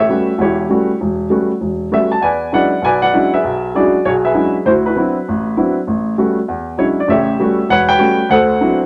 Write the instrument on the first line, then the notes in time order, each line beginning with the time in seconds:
grand piano
0.00 G4 C#5 E5
0.09 G3 A3 B3 C#4 F#4
0.38 E1 E2 E4 C#5
0.42 G4
0.70 G3 A3 B3 C#4 F#4
1.01 E1
1.30 G3 A3 B3 C#4 F#4
1.61 E1
1.92 G3 A3 B3 C#4 F#4 E5
2.12 A5
2.21 E2 B4 D5 G#5
2.52 F#3 G#3 C#4 D4 E4 B4 D5 F#5
2.82 B1 B4 D5 G#5
3.02 B4 D5 F#5
3.13 F#3 G#3 C#4 D4 E4
3.34 G#4 B4 E5
3.44 B1
3.75 F#3 G#3 C#4 D4 E4 F#4 G#4 D5
4.05 B1 F#4 G#4 C#5
4.25 G#4 B4 E5
4.34 F#3 G#3 C#4 D4 E4
4.65 D2 E4 F#4 C5
4.86 E4 F#4 B4
4.96 F#3 B3 C4 D4 E4
5.28 A1
5.57 F#3 B3 C4 D4 E4
5.87 A1
6.18 G3 A3 B3 C#4 F#4
6.48 E2
6.78 F#3 G#3 C#4 D4 E4 C#5
7.00 D5
7.08 A1 C#3 G4 C#5 E5
7.40 G3 A3 B3 C#4 F#4
7.69 E1 B4 C#5 F#5
7.89 B4 C#5 G5
7.99 G3 A3 B3 C#4 F#4
8.29 D2 A4 C5 F#5
8.61 F#3 B3 C4 D4 E4